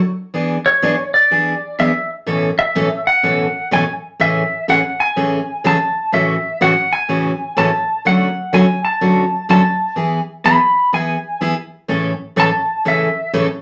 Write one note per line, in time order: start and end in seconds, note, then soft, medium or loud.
0.34 0.56 E3 medium
0.34 0.57 B3 medium
0.34 0.57 D4 medium
0.34 0.57 G#4 medium
0.66 1.11 C#5 medium
0.82 0.94 E3 medium
0.82 0.95 B3 medium
0.82 0.95 D4 medium
0.82 0.95 G#4 medium
1.14 1.75 D5 medium
1.31 1.53 E3 medium
1.31 1.53 B3 medium
1.31 1.53 D4 medium
1.31 1.53 G#4 medium
1.79 1.91 E3 medium
1.79 1.91 B3 medium
1.79 1.91 D4 medium
1.79 1.91 G#4 medium
1.79 2.10 E5 medium
2.26 2.49 A2 medium
2.26 2.49 B2 medium
2.26 2.49 E3 medium
2.26 2.49 A3 medium
2.26 2.50 C#4 medium
2.26 2.49 A4 medium
2.59 3.03 E5 medium
2.75 2.87 A2 medium
2.75 2.87 B2 medium
2.75 2.87 E3 medium
2.75 2.87 A3 medium
2.75 2.87 C#4 medium
2.75 2.88 A4 medium
3.07 3.68 F#5 loud
3.23 3.46 A2 medium
3.23 3.46 B2 medium
3.23 3.46 E3 medium
3.23 3.46 A3 medium
3.23 3.46 C#4 medium
3.23 3.46 A4 medium
3.71 3.83 A2 medium
3.71 3.83 B2 medium
3.71 3.83 E3 medium
3.71 3.84 A3 medium
3.71 3.84 C#4 medium
3.71 3.84 A4 medium
3.71 3.92 G#5 medium
4.20 4.42 A2 medium
4.20 4.42 C#3 medium
4.20 4.42 E3 medium
4.20 4.42 A3 medium
4.20 4.42 C#4 medium
4.20 4.42 G#4 medium
4.20 4.65 E5 medium
4.68 4.80 A2 medium
4.68 4.80 C#3 medium
4.68 4.80 E3 medium
4.68 4.80 A3 medium
4.68 4.80 C#4 medium
4.68 4.80 G#4 medium
4.68 4.99 F#5 medium
5.00 5.60 G#5 loud
5.16 5.38 A2 medium
5.16 5.39 C#3 medium
5.16 5.39 E3 medium
5.16 5.39 A3 medium
5.16 5.39 C#4 medium
5.16 5.39 G#4 medium
5.64 5.76 A2 medium
5.64 5.76 C#3 medium
5.64 5.76 E3 medium
5.64 5.76 A3 medium
5.64 5.76 C#4 medium
5.64 5.76 G#4 medium
5.64 6.10 A5 loud
6.12 6.35 A2 medium
6.12 6.35 C#3 medium
6.12 6.35 E3 medium
6.12 6.35 A3 medium
6.12 6.35 C#4 medium
6.12 6.35 F#4 medium
6.12 6.58 E5 medium
6.61 6.72 A2 medium
6.61 6.72 C#3 medium
6.61 6.73 E3 medium
6.61 6.73 A3 medium
6.61 6.73 C#4 medium
6.61 6.73 F#4 medium
6.61 6.92 F#5 medium
6.93 7.53 G#5 loud
7.09 7.31 A2 medium
7.09 7.31 C#3 medium
7.09 7.31 E3 medium
7.09 7.31 A3 medium
7.09 7.31 C#4 medium
7.09 7.31 F#4 medium
7.57 7.68 A2 medium
7.57 7.69 C#3 medium
7.57 7.69 E3 medium
7.57 7.69 A3 medium
7.57 7.69 C#4 medium
7.57 7.69 F#4 medium
7.57 8.02 A5 medium
8.05 8.27 D3 medium
8.05 8.27 F#3 medium
8.05 8.28 A3 medium
8.05 8.28 C#4 medium
8.05 8.28 F#4 medium
8.05 8.51 F#5 medium
8.53 8.65 D3 medium
8.53 8.65 F#3 medium
8.53 8.65 A3 medium
8.53 8.65 C#4 medium
8.53 8.65 F#4 medium
8.53 8.84 G#5 loud
8.85 9.45 A5 loud
9.01 9.23 D3 medium
9.01 9.23 F#3 medium
9.01 9.23 A3 medium
9.01 9.24 C#4 medium
9.01 9.24 F#4 medium
9.49 9.61 D3 medium
9.49 9.61 F#3 medium
9.49 9.61 A3 medium
9.49 9.61 C#4 medium
9.49 9.61 F#4 medium
9.49 9.95 A5 medium
9.96 10.19 E3 medium
9.96 10.19 B3 medium
9.96 10.19 E4 medium
9.96 10.19 G#4 medium
10.44 10.57 E3 medium
10.44 10.57 B3 medium
10.44 10.57 E4 medium
10.44 10.57 G#4 medium
10.44 10.90 B5 medium
10.93 11.15 E3 medium
10.93 11.15 B3 medium
10.93 11.16 E4 medium
10.93 11.16 G#4 medium
10.93 11.39 G#5 medium
11.41 11.53 E3 medium
11.41 11.53 B3 medium
11.41 11.53 E4 medium
11.41 11.54 G#4 medium
11.88 12.11 A2 medium
11.88 12.11 C#3 medium
11.88 12.12 E3 medium
11.88 12.12 A3 medium
11.88 12.12 C#4 medium
11.88 12.12 A4 medium
12.36 12.49 A2 medium
12.36 12.49 C#3 medium
12.36 12.49 E3 medium
12.36 12.49 A3 medium
12.36 12.49 C#4 medium
12.36 12.49 A4 medium
12.36 12.83 A5 loud
12.85 13.08 A2 medium
12.85 13.08 C#3 medium
12.85 13.08 E3 medium
12.85 13.08 A3 medium
12.85 13.08 C#4 medium
12.85 13.08 A4 medium
12.85 13.32 E5 medium
13.33 13.45 A2 medium
13.33 13.45 C#3 medium
13.33 13.45 E3 medium
13.33 13.46 A3 medium
13.33 13.46 C#4 medium
13.33 13.46 A4 medium